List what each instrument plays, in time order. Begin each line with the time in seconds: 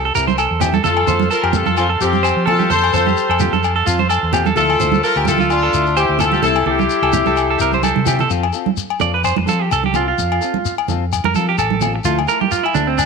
0.05 clean electric guitar A4
0.15 fingered electric bass C2, clean electric guitar C4 E4 G4 A#4, shekere
0.27 clean electric guitar C5, high conga, shekere
0.38 clean electric guitar A4, low agogo, shekere
0.51 fingered electric bass E2
0.61 clean electric guitar C4 E4 G4, low conga, low agogo, shekere
0.73 clean electric guitar A4, high conga, shekere
0.83 fingered electric bass F2, clean electric guitar F3 F4 A4, trumpet F4, horn section A4, transistor combo organ F5 A5 C6, muted clean electric guitar stroke, low conga, shekere
0.97 low agogo
1.07 fingered electric bass F2, clean electric guitar C4 F4 A4 C5, low conga, shekere
1.20 high conga, shekere
1.31 trumpet F4, clean electric guitar A4, horn section A#4, shekere
1.43 fingered electric bass F2, clean electric guitar G4, low agogo
1.53 clean electric guitar C4 F4 A4, trumpet F4, horn section A4, high conga, low conga, shekere
1.66 fingered electric bass F2, clean electric guitar A4, high conga, shekere
1.77 trumpet C4, horn section F4, low agogo, shekere
1.89 clean electric guitar A4
1.99 fingered electric bass F2, clean electric guitar C4 F4 A4, trumpet C4, horn section G4, shekere
2.13 high conga, shekere
2.23 clean electric guitar C5, low agogo, shekere
2.36 fingered electric bass F3
2.46 clean electric guitar C4 F4 A4, horn section A4, low conga, low agogo
2.50 trumpet F4
2.59 clean electric guitar G4, high conga, shekere
2.70 fingered electric bass F2, clean electric guitar A4, trumpet A4, horn section C5, low conga, shekere
2.84 low agogo
2.93 fingered electric bass F2, clean electric guitar C4 F4 A4, trumpet A4, horn section C5, low conga, shekere
3.07 clean electric guitar G4, high conga, shekere
3.17 shekere
3.29 fingered electric bass F2, clean electric guitar A4, low agogo
3.39 clean electric guitar C4 F4 G4 A4, high conga, low conga, shekere
3.52 fingered electric bass F2, clean electric guitar A4, high conga, shekere
3.64 low agogo, shekere
3.76 clean electric guitar A4
3.86 fingered electric bass F2, clean electric guitar C4 F4 A4, shekere
3.99 clean electric guitar C5, high conga
4.10 clean electric guitar A4, low agogo, shekere
4.23 fingered electric bass E2
4.32 clean electric guitar C4 F4 G4 A4, low conga, low agogo, shekere
4.46 clean electric guitar A4, high conga, shekere
4.55 fingered electric bass D2, clean electric guitar F3 A3 E4 A4, trumpet F4, horn section A4, transistor combo organ E5 D6, low conga, shekere
4.70 low agogo
4.79 fingered electric bass D2, clean electric guitar A3 E4 A4 C5, low conga, shekere
4.92 high conga, shekere
5.03 trumpet F4, clean electric guitar A4, horn section A#4, shekere
5.16 fingered electric bass D2, clean electric guitar G4, low agogo
5.25 clean electric guitar A3 E4 A4, trumpet F4, horn section A4, high conga, low conga, shekere
5.38 fingered electric bass D2, clean electric guitar F4, high conga, shekere
5.50 trumpet D4, horn section F4, low agogo, shekere
5.63 clean electric guitar A4
5.73 fingered electric bass D2, clean electric guitar A3 E4 A4, shekere
5.86 shekere
5.97 trumpet E4, horn section G4, clean electric guitar C5, low agogo, shekere
6.09 fingered electric bass D2
6.19 clean electric guitar A3 E4 A4, trumpet F4, horn section A4, low conga, low agogo, shekere
6.32 clean electric guitar G4, high conga, shekere
6.42 fingered electric bass C2, clean electric guitar G3 C4 E4 G4 A4, trumpet E4, horn section A4, transistor combo organ G5 C6, low conga, shekere
6.56 low agogo
6.65 fingered electric bass C2, clean electric guitar C4 E4 G4 A4, trumpet E4, horn section G4, low conga
6.79 clean electric guitar G4, high conga, shekere
6.90 shekere
7.02 fingered electric bass C2, clean electric guitar A4, low agogo
7.13 clean electric guitar C4 E4 G4, high conga, low conga, shekere
7.26 fingered electric bass C2, clean electric guitar A4, high conga, shekere
7.37 low agogo, shekere
7.51 clean electric guitar A4
7.58 fingered electric bass C2, clean electric guitar C4 E4 G4 A#4, shekere
7.72 clean electric guitar C5, high conga, shekere
7.83 clean electric guitar A4, high conga, low agogo, shekere
7.96 fingered electric bass C3, high conga
8.05 clean electric guitar C4 E4 G4, low conga, low agogo, shekere
8.19 clean electric guitar A4, low conga, shekere
8.30 fingered electric bass F2, clean electric guitar C4 F4 A4, muted clean electric guitar stroke, shekere
8.43 low agogo
8.53 clean electric guitar C4 F4 A4, shekere
8.66 high conga
8.77 shekere
8.90 low agogo
9.00 fingered electric bass F2, clean electric guitar C4 F4 A4 D5, low conga, shekere
9.14 clean electric guitar B4
9.24 clean electric guitar C5, low agogo, shekere
9.36 fingered electric bass F2, muted clean electric guitar stroke, high conga
9.46 fingered electric bass F3, clean electric guitar C4 F4 A4, high conga, shekere
9.62 clean electric guitar G4
9.71 fingered electric bass C2, clean electric guitar A4, low agogo, shekere
9.84 clean electric guitar G4, high conga
9.94 clean electric guitar C4 F4 A4, low conga, low agogo, shekere
10.08 clean electric guitar F4
10.18 fingered electric bass F2, shekere
10.32 low agogo
10.41 clean electric guitar C4 F4 A4, shekere
10.54 high conga
10.65 shekere
10.78 low agogo
10.88 fingered electric bass F2, clean electric guitar C4 F4 A4, low conga, shekere
11.13 low agogo, shekere
11.24 fingered electric bass F2, clean electric guitar A#4, high conga
11.34 fingered electric bass F3, clean electric guitar C4 F4 A4, high conga, shekere
11.49 clean electric guitar G4
11.58 fingered electric bass A1, clean electric guitar A4, low agogo, shekere
11.70 high conga
11.81 clean electric guitar C4 F4 A4, low conga, low agogo, shekere
11.96 muted clean electric guitar stroke
12.04 fingered electric bass D2, clean electric guitar F3 A3 E4 F4 A4, shekere
12.19 low agogo
12.27 clean electric guitar A3 E4 A4 A#4, shekere
12.41 clean electric guitar G4, high conga
12.51 clean electric guitar F4, shekere
12.64 clean electric guitar E4, low agogo
12.74 fingered electric bass D2, clean electric guitar A3 D4 E4 A4, low conga, shekere
12.87 clean electric guitar C4
12.98 clean electric guitar D4, low agogo, shekere